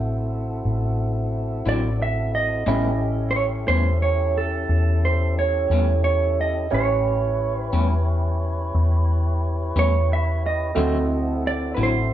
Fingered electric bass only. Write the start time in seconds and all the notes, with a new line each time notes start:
Already playing: A1
0.65 A1
1.66 A1
2.67 A1
3.68 E2
4.69 E2
5.70 E2
6.73 A1
7.73 E2
8.75 E2
9.76 E2
10.77 D2
11.78 A1